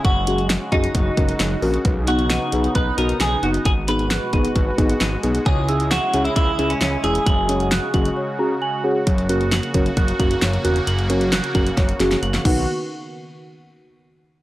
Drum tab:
CC |----------------|----------------|----------------|----------------|
HH |x-xxx-xxx-xxx-ox|x-xxx-xxx-xxx-xx|x-xxx-xxx-xxx-xx|x-xxx-xxx-xxx-xx|
SD |----o-------o---|----o-------o---|----o-------o---|----o-------o---|
BD |o-----o-o-o-----|o-------o-------|o-----o-o-o-----|o-------o-------|

CC |----------------|----------------|--------------x-|----------------|
HH |x-xxx-xx--------|xxxxxxxxxxxxxxxx|xxxxxxxxxxxxxx--|----------------|
SD |----o-----------|----o-------o---|----o---o-oo-o--|----------------|
BD |o-----o---------|o-----o-o-o-----|------o-o-----o-|----------------|